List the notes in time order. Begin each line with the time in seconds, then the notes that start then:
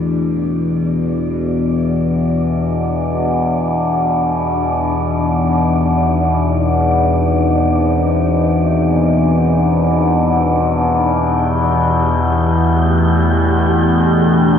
Already playing: E2 B2 E3 A3 D4 G4 B4 D5
3.90 D#4
6.57 C5
10.88 E3 G4 G5
11.60 A3
13.01 D4
14.06 B4
14.15 G4